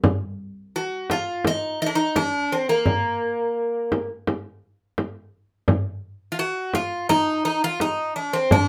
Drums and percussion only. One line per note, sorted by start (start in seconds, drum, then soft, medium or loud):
0.04 frame drum medium
1.10 frame drum medium
1.45 frame drum medium
2.16 frame drum medium
2.86 frame drum medium
3.92 frame drum medium
4.27 frame drum medium
4.98 frame drum medium
5.68 frame drum medium
6.74 frame drum medium
7.10 frame drum medium
7.80 frame drum medium
8.51 frame drum medium